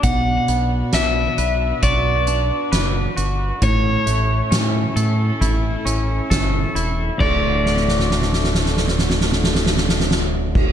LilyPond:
<<
  \new Staff \with { instrumentName = "Overdriven electric guitar" } { \time 4/4 \key d \major \tempo 4 = 67 fis''4 e''4 d''2 | cis''2. r4 | d''1 | }
  \new Staff \with { instrumentName = "Clean electric guitar" } { \time 4/4 \key d \major b,8 b8 d'8 b'8 fis'8 d'8 b'8 fis'8 | a,8 a8 cis'8 a'8 e'8 cis'8 a'8 e'8 | <d, a, d a fis'>1 | }
  \new Staff \with { instrumentName = "String section" } { \time 4/4 \key d \major <b d' fis'>1 | <a cis' e'>1 | <d d' fis' a'>1 | }
  \new Staff \with { instrumentName = "Fingered electric bass" } { \clef bass \time 4/4 \key d \major b,,8 b,,8 b,,8 b,,8 b,,4 fis,,8 g,,8 | a,,8 a,,8 a,8 a,8 a,,8 a,,8 g,,8 e,,8 | d,,1 | }
  \new DrumStaff \with { instrumentName = "Drums" } \drummode { \time 4/4 <hh bd>8 hh8 <hh sn>8 hh8 <hh bd>8 hh8 <hh sn>8 hh8 | <hh bd>8 hh8 <hh sn>8 hh8 <hh bd>8 hh8 <hh bd sn>8 hh8 | <cymc bd>8 sn32 sn32 sn32 sn32 sn32 sn32 sn32 sn32 sn32 sn32 sn32 sn32 sn32 sn32 sn32 sn32 sn32 sn32 sn32 sn32 sn32 sn32 sn8 <cymc bd>16 | }
>>